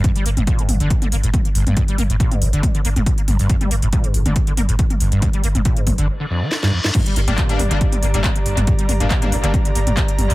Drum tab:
CC |----------------|----------------|----------------|----------------|
HH |xxoxxxoxxxoxxxox|xxoxxxoxxxoxxxoo|xxoxxxoxxxoxxxox|xxoxxxox--------|
CP |----------------|----------------|----------------|----------------|
SD |----------------|----------------|----------------|------------oo-o|
T2 |o--o--o--o--o--o|--o--o--o--o--o-|-o--o--o--o--o--|o--o--o---------|
BD |o---o---o---o---|o---o---o---o---|o---o---o---o---|o---o-o---------|

CC |x---------------|----------------|
HH |xxoxxxoxxxoxxxox|xxoxxxoxxxoxxxoo|
CP |----x-------x---|----x-------x---|
SD |----------------|----------------|
T2 |o--o--o--o--o--o|--o--o--o--o--o-|
BD |o---o---o---o---|o---o---o---o---|